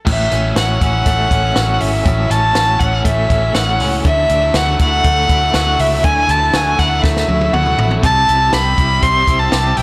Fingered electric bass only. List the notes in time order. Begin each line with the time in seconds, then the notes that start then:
0.07 A1
0.32 A1
0.56 A1
0.82 A1
1.06 A1
1.31 A1
1.56 A1
1.81 G#1
2.06 A1
2.30 A1
2.55 A1
2.81 A1
3.05 A1
3.30 A1
3.55 A1
3.80 C#2
4.05 D2
4.30 D2
4.54 D2
4.80 D2
5.05 D2
5.30 D2
5.55 D2
5.79 C#2
6.04 D2
6.28 D2
6.54 D2
6.79 D2
7.04 D2
7.28 D2
7.53 D2
7.78 A1
8.04 C2
8.29 C2
8.53 C2
8.78 C2
9.03 C2
9.28 C2
9.52 C2
9.77 B1